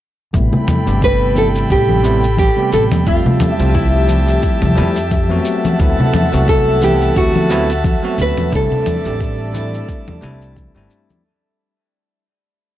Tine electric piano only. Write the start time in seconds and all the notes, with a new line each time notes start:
0.33 C3 G3 A3 B3 E4
0.86 C3 G3 A3 B3 G4
1.35 C3 G3 A3 B3 E4
2.03 C3 G3 A3 B3 E4
2.56 C3 G3 A3 B3 G4
3.06 F3 G3 A3 C4 E5
3.59 F3 G3 A3 C4 F4
4.07 F3 G3 A3 C4 E4
4.76 F3 G3 A3 C4 E4
5.29 F#3 A3 B3 C4 F#4
5.79 F#3 A3 B3 C4 E4
6.32 F#3 A3 B3 C4 F#4
6.81 E3 A3 B3 C4 E4
7.49 F#3 A3 B3 C4 E4
8.03 F#3 A3 B3 C4 F#4
8.51 G3 A3 C4 D4 E4
9.04 G3 A3 C4 D4 G4
9.53 G3 A3 C4 D4 E4
10.21 G3 A3 C4 D4 E4
10.75 G3 A3 C4 D4 E4